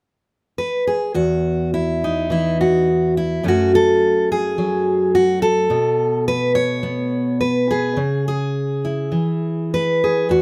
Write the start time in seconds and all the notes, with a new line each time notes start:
0.58 B4
0.87 G#4
1.14 E2 F#4
1.74 E4
2.04 D#4
2.30 E3 E4
2.61 F#4
3.17 E4
3.43 F#2 F#3 A3 C#4
3.48 F#4
3.75 A4
4.32 G#4
4.58 F#3
5.15 F#4
5.42 A4
5.70 B2
6.28 B4
6.55 C#5
6.83 B3
7.41 B4
7.71 G#4
7.97 C#3
8.28 G#4
8.85 E4
9.12 E3
9.74 B4
10.04 G#4
10.29 E2 F#4